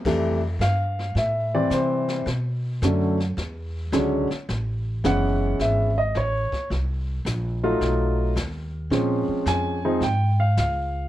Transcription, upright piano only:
0, 0, Header, 1, 2, 480
1, 0, Start_track
1, 0, Tempo, 554017
1, 44, Time_signature, 4, 2, 24, 8
1, 9604, End_track
2, 0, Start_track
2, 0, Title_t, "Upright piano"
2, 0, Program_c, 0, 0
2, 52, Note_on_c, 0, 55, 51
2, 53, Note_on_c, 0, 48, 56
2, 53, Note_on_c, 0, 57, 61
2, 56, Note_on_c, 0, 52, 52
2, 340, Note_off_c, 0, 55, 0
2, 341, Note_off_c, 0, 48, 0
2, 341, Note_off_c, 0, 57, 0
2, 342, Note_off_c, 0, 52, 0
2, 533, Note_on_c, 0, 77, 73
2, 976, Note_off_c, 0, 77, 0
2, 1022, Note_on_c, 0, 76, 63
2, 1329, Note_off_c, 0, 76, 0
2, 1339, Note_on_c, 0, 52, 52
2, 1339, Note_on_c, 0, 55, 50
2, 1340, Note_on_c, 0, 74, 76
2, 1341, Note_on_c, 0, 48, 55
2, 1343, Note_on_c, 0, 60, 59
2, 1487, Note_off_c, 0, 74, 0
2, 1503, Note_on_c, 0, 72, 66
2, 1940, Note_off_c, 0, 52, 0
2, 1940, Note_off_c, 0, 55, 0
2, 1941, Note_off_c, 0, 48, 0
2, 1942, Note_off_c, 0, 60, 0
2, 1942, Note_off_c, 0, 72, 0
2, 2461, Note_on_c, 0, 50, 50
2, 2462, Note_on_c, 0, 54, 45
2, 2462, Note_on_c, 0, 57, 49
2, 2464, Note_on_c, 0, 61, 54
2, 2745, Note_off_c, 0, 50, 0
2, 2745, Note_off_c, 0, 54, 0
2, 2746, Note_off_c, 0, 57, 0
2, 2747, Note_off_c, 0, 61, 0
2, 3401, Note_on_c, 0, 54, 55
2, 3407, Note_on_c, 0, 56, 53
2, 3409, Note_on_c, 0, 50, 58
2, 3409, Note_on_c, 0, 61, 64
2, 3695, Note_off_c, 0, 54, 0
2, 3698, Note_off_c, 0, 56, 0
2, 3698, Note_off_c, 0, 61, 0
2, 3699, Note_off_c, 0, 50, 0
2, 4366, Note_on_c, 0, 59, 50
2, 4372, Note_on_c, 0, 52, 53
2, 4372, Note_on_c, 0, 56, 48
2, 4377, Note_on_c, 0, 61, 62
2, 4386, Note_on_c, 0, 78, 82
2, 4822, Note_off_c, 0, 78, 0
2, 4866, Note_on_c, 0, 76, 66
2, 5104, Note_off_c, 0, 59, 0
2, 5107, Note_off_c, 0, 52, 0
2, 5107, Note_off_c, 0, 56, 0
2, 5110, Note_off_c, 0, 61, 0
2, 5169, Note_off_c, 0, 76, 0
2, 5181, Note_on_c, 0, 75, 71
2, 5326, Note_off_c, 0, 75, 0
2, 5349, Note_on_c, 0, 73, 70
2, 5784, Note_off_c, 0, 73, 0
2, 6615, Note_on_c, 0, 63, 55
2, 6616, Note_on_c, 0, 54, 60
2, 6618, Note_on_c, 0, 57, 53
2, 6618, Note_on_c, 0, 65, 67
2, 7216, Note_off_c, 0, 63, 0
2, 7217, Note_off_c, 0, 54, 0
2, 7217, Note_off_c, 0, 57, 0
2, 7217, Note_off_c, 0, 65, 0
2, 7722, Note_on_c, 0, 60, 48
2, 7723, Note_on_c, 0, 56, 47
2, 7726, Note_on_c, 0, 61, 58
2, 7728, Note_on_c, 0, 53, 52
2, 8210, Note_on_c, 0, 80, 79
2, 8461, Note_off_c, 0, 60, 0
2, 8462, Note_off_c, 0, 56, 0
2, 8463, Note_off_c, 0, 61, 0
2, 8464, Note_off_c, 0, 53, 0
2, 8533, Note_on_c, 0, 53, 58
2, 8534, Note_on_c, 0, 60, 56
2, 8534, Note_on_c, 0, 63, 65
2, 8535, Note_on_c, 0, 56, 54
2, 8653, Note_off_c, 0, 80, 0
2, 8670, Note_off_c, 0, 53, 0
2, 8671, Note_off_c, 0, 56, 0
2, 8671, Note_off_c, 0, 60, 0
2, 8671, Note_off_c, 0, 63, 0
2, 8693, Note_on_c, 0, 79, 79
2, 9002, Note_off_c, 0, 79, 0
2, 9008, Note_on_c, 0, 77, 70
2, 9159, Note_off_c, 0, 77, 0
2, 9178, Note_on_c, 0, 77, 65
2, 9604, Note_off_c, 0, 77, 0
2, 9604, End_track
0, 0, End_of_file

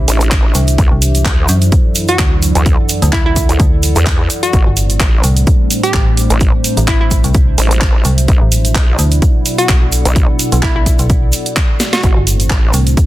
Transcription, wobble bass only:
0, 0, Header, 1, 2, 480
1, 0, Start_track
1, 0, Tempo, 468750
1, 803, Time_signature, 4, 2, 24, 8
1, 13374, End_track
2, 0, Start_track
2, 0, Title_t, "Wobble bass"
2, 0, Program_c, 0, 39
2, 83, Note_on_c, 0, 33, 96
2, 546, Note_off_c, 0, 33, 0
2, 802, Note_on_c, 0, 38, 93
2, 914, Note_off_c, 0, 38, 0
2, 1283, Note_on_c, 0, 38, 99
2, 1506, Note_off_c, 0, 38, 0
2, 2615, Note_on_c, 0, 38, 98
2, 2834, Note_off_c, 0, 38, 0
2, 3575, Note_on_c, 0, 38, 95
2, 3666, Note_off_c, 0, 38, 0
2, 4054, Note_on_c, 0, 40, 104
2, 4385, Note_off_c, 0, 40, 0
2, 4642, Note_on_c, 0, 33, 98
2, 4754, Note_off_c, 0, 33, 0
2, 5122, Note_on_c, 0, 33, 97
2, 5345, Note_off_c, 0, 33, 0
2, 6454, Note_on_c, 0, 33, 94
2, 6674, Note_off_c, 0, 33, 0
2, 7763, Note_on_c, 0, 33, 100
2, 8226, Note_off_c, 0, 33, 0
2, 8483, Note_on_c, 0, 35, 96
2, 8594, Note_off_c, 0, 35, 0
2, 8963, Note_on_c, 0, 35, 105
2, 9186, Note_off_c, 0, 35, 0
2, 10295, Note_on_c, 0, 35, 95
2, 10514, Note_off_c, 0, 35, 0
2, 12323, Note_on_c, 0, 33, 96
2, 12435, Note_off_c, 0, 33, 0
2, 12803, Note_on_c, 0, 33, 99
2, 13026, Note_off_c, 0, 33, 0
2, 13374, End_track
0, 0, End_of_file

